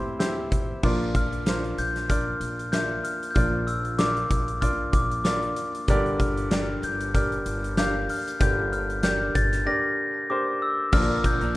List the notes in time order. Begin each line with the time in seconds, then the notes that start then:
Already playing: D2 G2 C4 E4 G4 A4 A#4 C5 E6
0.19 C4 E4 G4 C5, snare, closed hi-hat
0.52 A1, kick, closed hi-hat
0.83 A#1 A#2 F3 D4 F4 A#4 D5, kick, crash
1.15 F6, kick, closed hi-hat
1.33 closed hi-hat
1.46 D4 F4 A#4 C5, snare, closed hi-hat
1.64 closed hi-hat
1.78 A#1 G6, closed hi-hat
1.96 snare, closed hi-hat
2.10 D4 F4 A#4 D5 F6, kick, closed hi-hat
2.40 A#1, closed hi-hat
2.59 closed hi-hat
2.72 D4 F4 A#4 E5 G6, snare, closed hi-hat
3.04 F6, closed hi-hat
3.23 closed hi-hat
3.31 F6 G6
3.35 A#1 A#2 F3 D4 F4 A#4 D5, kick, closed hi-hat
3.67 E6, closed hi-hat
3.85 closed hi-hat
3.98 D4 F4 A#4 D5 D6, snare, closed hi-hat
4.17 closed hi-hat
4.31 A#1, kick, closed hi-hat
4.48 closed hi-hat
4.61 D4 F4 A#4 D5 F6, kick, closed hi-hat
4.93 A#1 D6, kick, closed hi-hat
5.11 closed hi-hat
5.24 D4 F4 A#4 D5 D6, snare, closed hi-hat
5.43 closed hi-hat
5.56 closed hi-hat
5.75 closed hi-hat
5.88 G1 G2 D3 D4 G4 A#4 D5, kick, closed hi-hat
6.06 closed hi-hat
6.20 F6, kick, closed hi-hat
6.37 closed hi-hat
6.51 D4 G4 A#4 D5, snare, closed hi-hat
6.82 G1 G6, closed hi-hat
7.01 closed hi-hat
7.14 D4 G4 A#4 D5 F6, kick, closed hi-hat
7.32 closed hi-hat
7.46 G1, closed hi-hat
7.64 closed hi-hat
7.77 D4 G4 A#4 F5 G6, snare, closed hi-hat
8.09 F6, open hi-hat
8.28 closed hi-hat
8.40 G1 G2 D3 D4 G4 A#4 D5 G6, kick, closed hi-hat
8.72 F6, closed hi-hat
8.90 closed hi-hat
9.03 D4 G4 A#4 D5 G6, snare, closed hi-hat
9.35 G1 A6, kick, closed hi-hat
9.53 snare, closed hi-hat
9.66 D4 G4 A#4 D5 A#6
10.30 D4 G4 A#4 C5 D6
10.62 E6
10.92 A#1 A#2 D3 F3 A#3 D4 F4 A#4 D5 F6, kick, crash
11.24 G6, kick, closed hi-hat
11.41 A#1 F3 A#3 D4 A#4, closed hi-hat